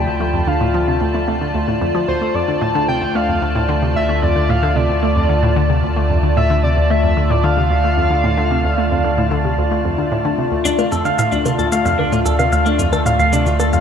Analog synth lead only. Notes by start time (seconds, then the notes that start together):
Already playing: G5
0.47 F5
2.08 C5
2.35 D5
2.61 A5
2.88 G5
3.15 F5
3.96 E5
4.23 D5
4.49 F5
4.76 D5
6.37 E5
6.64 D5
6.90 E5
7.30 D5
7.44 F5